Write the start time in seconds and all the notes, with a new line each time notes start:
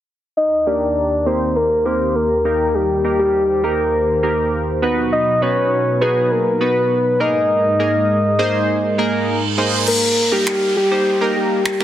0.37 D#2 D#3 G4 A#4 D#5
0.67 A#3 D#4 G4 A#4 D5
1.26 A#3 D#4 G4 C5
1.56 A#4
1.85 A#3 D#4 G4 A#4 C5
2.15 A#4
2.45 A#3 D#4 G4 A#4
2.75 G4 C5
3.04 A#3 D#4 G4 A#4
3.19 G4
3.63 A#3 D#4 G4 A#4
4.23 A#3 D#4 G4 A#4
4.82 B2 F#3 B3 D#4 F#4 B4
5.12 D#5
5.42 B3 D#4 F#4 B4 C#5
6.01 B3 D#4 F#4 G#4 B4
6.31 A#4
6.61 B3 D#4 F#4 B4
7.20 G#2 G#3 A#3 D#4 G#4 A#4 D#5
7.79 A#3 D#4 G#4 A#4
8.39 A#3 D#4 G#4 C5
8.69 reverse cymbal
8.98 A#3 D#4 G#4 A#4
9.58 A#3 D#4 G#4 C5
9.87 A#4, crash, downlifter
10.32 A#3 D#4 G4 A#4
10.47 finger snap
10.77 G4
10.91 A#3 D#4 G4 C5
11.21 A#3 D#4 G4 A#4
11.36 G4
11.65 finger snap
11.80 A#3 D#4 G4 A#4, finger snap